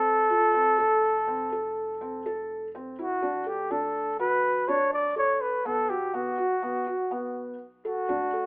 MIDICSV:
0, 0, Header, 1, 4, 480
1, 0, Start_track
1, 0, Key_signature, 2, "major"
1, 0, Tempo, 486618
1, 781, Time_signature, 5, 2, 24, 8
1, 8347, End_track
2, 0, Start_track
2, 0, Title_t, "Flugelhorn"
2, 0, Program_c, 0, 56
2, 0, Note_on_c, 0, 69, 96
2, 2709, Note_off_c, 0, 69, 0
2, 2952, Note_on_c, 0, 66, 79
2, 3435, Note_on_c, 0, 67, 76
2, 3450, Note_off_c, 0, 66, 0
2, 3666, Note_on_c, 0, 69, 76
2, 3681, Note_off_c, 0, 67, 0
2, 4136, Note_off_c, 0, 69, 0
2, 4142, Note_on_c, 0, 71, 87
2, 4618, Note_on_c, 0, 73, 85
2, 4633, Note_off_c, 0, 71, 0
2, 4858, Note_off_c, 0, 73, 0
2, 4864, Note_on_c, 0, 74, 78
2, 5084, Note_off_c, 0, 74, 0
2, 5110, Note_on_c, 0, 73, 83
2, 5338, Note_on_c, 0, 71, 74
2, 5353, Note_off_c, 0, 73, 0
2, 5580, Note_on_c, 0, 69, 83
2, 5595, Note_off_c, 0, 71, 0
2, 5815, Note_on_c, 0, 67, 81
2, 5830, Note_off_c, 0, 69, 0
2, 6062, Note_on_c, 0, 66, 75
2, 6076, Note_off_c, 0, 67, 0
2, 7478, Note_off_c, 0, 66, 0
2, 7742, Note_on_c, 0, 66, 78
2, 8347, Note_off_c, 0, 66, 0
2, 8347, End_track
3, 0, Start_track
3, 0, Title_t, "Felt piano"
3, 0, Program_c, 1, 0
3, 0, Note_on_c, 1, 60, 80
3, 231, Note_off_c, 1, 60, 0
3, 294, Note_on_c, 1, 65, 74
3, 503, Note_off_c, 1, 65, 0
3, 531, Note_on_c, 1, 60, 68
3, 741, Note_off_c, 1, 60, 0
3, 772, Note_on_c, 1, 69, 71
3, 1186, Note_off_c, 1, 69, 0
3, 1258, Note_on_c, 1, 60, 70
3, 1464, Note_off_c, 1, 60, 0
3, 1501, Note_on_c, 1, 69, 70
3, 1911, Note_off_c, 1, 69, 0
3, 1983, Note_on_c, 1, 60, 69
3, 2186, Note_off_c, 1, 60, 0
3, 2227, Note_on_c, 1, 69, 82
3, 2634, Note_off_c, 1, 69, 0
3, 2710, Note_on_c, 1, 60, 74
3, 2910, Note_off_c, 1, 60, 0
3, 2946, Note_on_c, 1, 64, 70
3, 3147, Note_off_c, 1, 64, 0
3, 3180, Note_on_c, 1, 62, 68
3, 3384, Note_off_c, 1, 62, 0
3, 3416, Note_on_c, 1, 69, 60
3, 3622, Note_off_c, 1, 69, 0
3, 3655, Note_on_c, 1, 62, 69
3, 4067, Note_off_c, 1, 62, 0
3, 4136, Note_on_c, 1, 66, 71
3, 4548, Note_off_c, 1, 66, 0
3, 4619, Note_on_c, 1, 62, 76
3, 5030, Note_off_c, 1, 62, 0
3, 5090, Note_on_c, 1, 69, 64
3, 5505, Note_off_c, 1, 69, 0
3, 5574, Note_on_c, 1, 59, 68
3, 5782, Note_off_c, 1, 59, 0
3, 5814, Note_on_c, 1, 66, 58
3, 6022, Note_off_c, 1, 66, 0
3, 6053, Note_on_c, 1, 59, 69
3, 6262, Note_off_c, 1, 59, 0
3, 6290, Note_on_c, 1, 66, 71
3, 6500, Note_off_c, 1, 66, 0
3, 6535, Note_on_c, 1, 59, 69
3, 6743, Note_off_c, 1, 59, 0
3, 6774, Note_on_c, 1, 66, 62
3, 6983, Note_off_c, 1, 66, 0
3, 7013, Note_on_c, 1, 59, 74
3, 7429, Note_off_c, 1, 59, 0
3, 7741, Note_on_c, 1, 69, 72
3, 7949, Note_off_c, 1, 69, 0
3, 7978, Note_on_c, 1, 62, 73
3, 8187, Note_off_c, 1, 62, 0
3, 8221, Note_on_c, 1, 69, 60
3, 8347, Note_off_c, 1, 69, 0
3, 8347, End_track
4, 0, Start_track
4, 0, Title_t, "Upright bass"
4, 0, Program_c, 2, 32
4, 0, Note_on_c, 2, 29, 67
4, 745, Note_off_c, 2, 29, 0
4, 790, Note_on_c, 2, 29, 67
4, 3141, Note_off_c, 2, 29, 0
4, 3182, Note_on_c, 2, 38, 64
4, 5542, Note_off_c, 2, 38, 0
4, 5582, Note_on_c, 2, 35, 63
4, 7946, Note_off_c, 2, 35, 0
4, 7978, Note_on_c, 2, 38, 70
4, 8347, Note_off_c, 2, 38, 0
4, 8347, End_track
0, 0, End_of_file